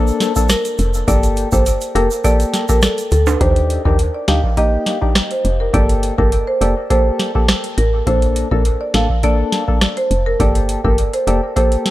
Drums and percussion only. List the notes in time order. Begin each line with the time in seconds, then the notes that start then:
0.07 shaker
0.20 snare, closed hi-hat, shaker
0.36 kick, shaker
0.49 cross-stick, snare, closed hi-hat, shaker
0.65 closed hi-hat, shaker
0.78 closed hi-hat, shaker
0.94 shaker
1.08 kick, closed hi-hat, shaker
1.23 closed hi-hat, shaker
1.37 closed hi-hat, shaker
1.52 kick, shaker
1.66 closed hi-hat, shaker
1.81 closed hi-hat, shaker
1.96 closed hi-hat
2.11 shaker
2.24 kick, closed hi-hat, shaker
2.40 closed hi-hat, shaker
2.54 snare, closed hi-hat, shaker
2.69 kick, shaker
2.82 cross-stick, snare, closed hi-hat, shaker
2.98 closed hi-hat, shaker
3.11 closed hi-hat, shaker
3.27 high timbale, shaker
3.41 kick, closed hi-hat
3.56 closed hi-hat
3.70 closed hi-hat
3.86 kick
3.99 closed hi-hat
4.28 snare, closed hi-hat
4.43 kick
4.57 kick, closed hi-hat
4.86 snare, closed hi-hat
5.02 kick
5.15 cross-stick, snare, closed hi-hat
5.31 closed hi-hat
5.45 closed hi-hat
5.74 kick, closed hi-hat
5.89 closed hi-hat
6.03 closed hi-hat
6.19 kick
6.32 closed hi-hat
6.62 closed hi-hat
6.90 kick, closed hi-hat
7.19 snare, closed hi-hat
7.35 kick
7.48 cross-stick, snare, closed hi-hat
7.64 closed hi-hat
7.78 closed hi-hat
8.07 kick, closed hi-hat
8.22 closed hi-hat
8.36 closed hi-hat
8.52 kick
8.65 closed hi-hat
8.94 snare, closed hi-hat
9.09 kick
9.23 kick, closed hi-hat
9.52 snare, closed hi-hat
9.68 kick
9.81 cross-stick, snare, closed hi-hat
9.97 closed hi-hat
10.11 closed hi-hat
10.40 kick, closed hi-hat
10.55 closed hi-hat
10.69 closed hi-hat
10.85 kick
10.98 closed hi-hat
11.13 closed hi-hat
11.28 closed hi-hat
11.56 kick, closed hi-hat
11.72 closed hi-hat
11.86 snare, closed hi-hat